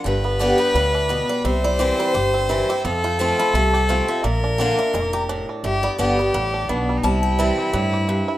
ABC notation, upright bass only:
X:1
M:4/4
L:1/8
Q:"Swing" 1/4=172
K:C
V:1 name="Upright bass" clef=bass
G,,,4 D,,4 | C,,4 G,,,4 | F,,4 C,,4 | _B,,,4 F,,,4 |
G,,,2 G,,,2 A,,,2 B,,,2 | C,,4 G,,4 |]